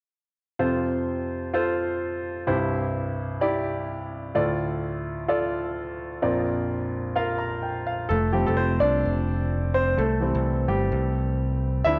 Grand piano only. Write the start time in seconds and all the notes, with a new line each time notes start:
0.59 F2 C3 F4 A4 C5
1.53 F4 A4 C5
2.47 C2 G2 E4 G4 C5
3.41 E4 G4 D5
4.35 D2 A2 F4 A4 D5
5.28 F4 A4 D5
6.22 A#1 F2 F4 A#4 D5
7.16 F4 A#4 F5
7.39 A#5
7.63 G5
7.87 F5
8.09 A3 A4
8.32 F3 G3 A3 C4 G4
8.46 A3 A4
8.57 C4 C5
8.80 D4 D5
9.74 C4 C5
9.97 A3 A4
10.20 E3 G3 C4
10.68 G3 G4
11.84 F3 A3 D4 E4 E5